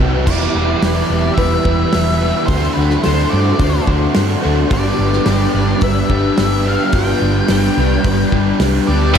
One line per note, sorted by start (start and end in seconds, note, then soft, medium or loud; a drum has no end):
0.00 0.24 C2 medium
0.00 0.14 C3 medium
0.00 0.26 C3 medium
0.00 0.26 E3 medium
0.00 0.16 G3 medium
0.00 0.15 G3 medium
0.00 0.15 C4 medium
0.00 0.14 E4 medium
0.00 0.13 E4 medium
0.00 0.84 G4 medium
0.00 0.12 G4 medium
0.14 0.27 G3 medium
0.14 0.28 G3 medium
0.14 0.27 C4 medium
0.14 0.26 E4 medium
0.14 0.27 E4 medium
0.14 0.26 G4 medium
0.27 0.46 E1 loud
0.27 0.82 E3 medium
0.27 1.11 E3 medium
0.27 0.58 G3 medium
0.27 0.82 B3 medium
0.27 0.56 B3 medium
0.27 0.83 E4 medium
0.27 0.83 E4 loud
0.27 0.55 E4 medium
0.27 0.84 G4 loud
0.27 1.41 D5 medium
0.27 kick loud
0.27 crash loud
0.31 0.85 B4 loud
0.55 0.73 E1 medium
0.55 0.83 G3 medium
0.55 0.83 B3 medium
0.55 0.84 E4 medium
0.82 1.01 E1 medium
0.82 1.92 E3 medium
0.82 1.68 G3 medium
0.82 1.36 B3 medium
0.82 1.66 B3 medium
0.82 1.12 E4 medium
0.82 1.64 E4 medium
0.82 2.20 G4 medium
0.82 1.11 G4 medium
0.82 1.09 B4 medium
0.82 snare loud
0.82 open hi-hat medium
1.10 1.29 E1 medium
1.10 1.37 E4 medium
1.10 1.38 G4 medium
1.10 1.39 B4 medium
1.34 2.47 E3 medium
1.34 2.47 B3 medium
1.34 2.50 E5 loud
1.34 kick medium
1.38 1.57 E1 medium
1.38 2.22 E4 medium
1.38 2.22 G4 medium
1.38 1.64 B4 medium
1.38 2.19 B4 medium
1.38 open hi-hat medium
1.65 1.84 E1 medium
1.65 1.94 G3 medium
1.65 1.93 B3 medium
1.65 1.94 E4 medium
1.65 2.20 B4 medium
1.65 kick medium
1.93 2.31 E1 medium
1.93 2.47 E3 medium
1.93 2.24 G3 medium
1.93 2.22 B3 medium
1.93 2.20 E4 medium
1.93 snare loud
1.93 open hi-hat medium
2.20 2.49 B3 medium
2.20 2.48 E4 medium
2.20 2.49 E4 medium
2.20 2.99 G4 medium
2.20 2.50 G4 medium
2.20 2.47 B4 medium
2.24 2.51 G3 medium
2.46 2.67 D2 medium
2.46 3.31 D3 medium
2.46 3.04 D3 medium
2.46 3.32 F#3 medium
2.46 3.02 A3 loud
2.46 3.03 D4 loud
2.46 2.73 C5 medium
2.46 kick loud
2.46 open hi-hat medium
2.50 2.79 A3 loud
2.50 2.78 C4 medium
2.50 3.04 F#4 medium
2.50 2.76 F#4 loud
2.50 3.05 C5 medium
2.74 2.96 D2 medium
2.74 3.06 F#4 medium
2.74 3.03 B4 medium
2.79 3.06 A3 medium
2.79 3.06 C4 medium
2.90 snare soft
3.03 3.24 D2 medium
3.03 4.13 D3 medium
3.03 3.35 A3 medium
3.03 3.90 A3 medium
3.03 3.35 D4 medium
3.03 3.33 F#4 medium
3.03 4.42 A4 medium
3.03 3.33 C5 medium
3.03 3.31 C5 medium
3.03 snare medium
3.03 open hi-hat medium
3.07 3.88 C4 medium
3.07 3.87 F#4 medium
3.29 3.51 G2 medium
3.29 3.62 C5 medium
3.29 3.83 D5 medium
3.34 3.61 A3 medium
3.34 3.62 D4 medium
3.34 3.62 F#4 medium
3.59 3.78 D2 medium
3.59 4.70 D3 medium
3.59 4.70 F#3 medium
3.59 4.45 A3 medium
3.59 4.44 D4 medium
3.59 4.41 F#4 loud
3.59 3.86 C5 medium
3.59 kick medium
3.59 open hi-hat soft
3.63 4.41 C5 loud
3.87 4.06 D2 medium
3.87 4.15 A3 medium
3.87 4.15 C4 medium
3.87 4.16 F#4 medium
3.87 4.42 C5 medium
3.87 kick medium
4.15 4.35 G2 medium
4.15 4.69 D3 medium
4.15 4.45 A3 medium
4.15 4.44 C4 medium
4.15 4.42 F#4 medium
4.15 snare loud
4.15 open hi-hat medium
4.42 4.63 D2 medium
4.42 4.72 A3 medium
4.42 4.71 A3 medium
4.42 4.71 C4 medium
4.42 4.72 D4 medium
4.42 4.69 F#4 medium
4.42 4.70 F#4 medium
4.42 5.30 A4 medium
4.42 4.69 C5 medium
4.70 4.90 G1 medium
4.70 6.91 G2 loud
4.70 5.27 D3 loud
4.70 5.81 G3 medium
4.70 5.00 G3 medium
4.70 5.25 B3 medium
4.70 5.00 B3 medium
4.70 5.27 D4 medium
4.70 4.99 D4 medium
4.70 5.26 F4 medium
4.70 5.28 G4 medium
4.70 4.98 G4 loud
4.70 5.29 B4 loud
4.70 5.83 D5 medium
4.70 kick loud
4.70 open hi-hat medium
4.98 5.17 G1 medium
4.98 5.26 G3 medium
4.98 5.27 B3 medium
4.98 5.27 D4 medium
4.98 5.29 G4 medium
5.12 snare soft
5.25 5.45 G1 medium
5.25 6.12 G3 medium
5.25 5.82 B3 medium
5.25 6.12 B3 medium
5.25 5.58 D4 medium
5.25 6.10 D4 medium
5.25 6.66 G4 medium
5.25 5.56 G4 medium
5.25 6.10 G4 medium
5.25 5.54 B4 medium
5.25 snare loud
5.25 open hi-hat medium
5.54 5.73 G1 medium
5.54 5.84 G4 medium
5.54 5.84 B4 medium
5.59 5.82 D4 medium
5.81 6.01 G1 loud
5.81 6.92 G3 medium
5.81 6.93 B3 medium
5.81 6.67 D4 medium
5.81 6.67 G4 loud
5.81 6.10 B4 loud
5.81 6.64 B4 medium
5.81 6.68 E5 medium
5.81 kick loud
5.81 open hi-hat medium
6.10 6.29 G1 medium
6.10 6.38 G3 medium
6.10 6.39 B3 medium
6.10 6.39 D4 medium
6.10 6.40 G4 medium
6.10 6.97 B4 medium
6.10 kick medium
6.38 6.76 G1 medium
6.38 6.68 G3 medium
6.38 6.67 B3 medium
6.38 6.65 D4 medium
6.38 6.65 G4 medium
6.38 snare loud
6.38 open hi-hat medium
6.65 6.92 G3 medium
6.65 6.92 B3 medium
6.65 6.93 D4 medium
6.65 6.93 G4 medium
6.65 6.97 G4 medium
6.65 6.94 G4 medium
6.65 6.94 B4 medium
6.65 6.96 F5 medium
6.92 7.12 G1 medium
6.92 7.48 G2 medium
6.92 7.49 D3 medium
6.92 7.76 G3 medium
6.92 7.21 G3 loud
6.92 7.20 B3 medium
6.92 7.48 B3 medium
6.92 7.20 D4 medium
6.92 7.49 D4 medium
6.92 7.50 F4 medium
6.92 7.18 G4 loud
6.92 7.50 G4 loud
6.92 7.52 B4 loud
6.92 8.57 G5 medium
6.92 kick loud
6.92 open hi-hat medium
7.20 7.40 G1 medium
7.20 7.46 G3 soft
7.20 7.47 B3 medium
7.20 7.48 D4 medium
7.20 7.49 G4 medium
7.47 7.68 G1 medium
7.47 8.34 G3 medium
7.47 8.33 B3 medium
7.47 8.05 B3 medium
7.47 8.32 D4 medium
7.47 7.80 D4 medium
7.47 8.31 G4 medium
7.47 8.05 G4 medium
7.47 snare loud
7.47 open hi-hat medium
7.52 7.79 G4 medium
7.52 7.77 B4 medium
7.77 7.96 C2 medium
7.77 8.06 D4 medium
7.77 8.06 G4 medium
7.77 8.07 B4 medium
8.05 8.24 G1 medium
8.05 9.14 G3 loud
8.05 9.15 B3 medium
8.05 8.92 D4 medium
8.05 8.90 G4 medium
8.05 8.32 B4 medium
8.05 8.88 B4 medium
8.05 kick medium
8.05 open hi-hat medium
8.32 8.51 G1 medium
8.32 8.58 G3 medium
8.32 8.59 B3 medium
8.32 8.60 D4 medium
8.32 8.61 G4 medium
8.32 8.88 B4 medium
8.32 kick medium
8.59 8.79 C2 medium
8.59 8.88 G3 medium
8.59 8.88 B3 medium
8.59 8.87 D4 medium
8.59 8.85 G4 medium
8.59 snare loud
8.59 open hi-hat medium
8.87 9.15 D2 medium
8.87 9.15 G3 soft
8.87 9.15 B3 medium
8.87 9.14 D4 medium
8.87 9.14 G4 medium
8.87 9.16 G4 medium
8.87 9.15 B4 medium
8.87 9.15 D5 medium
8.91 9.17 D4 medium
8.91 9.16 G4 medium
9.14 9.18 C3 loud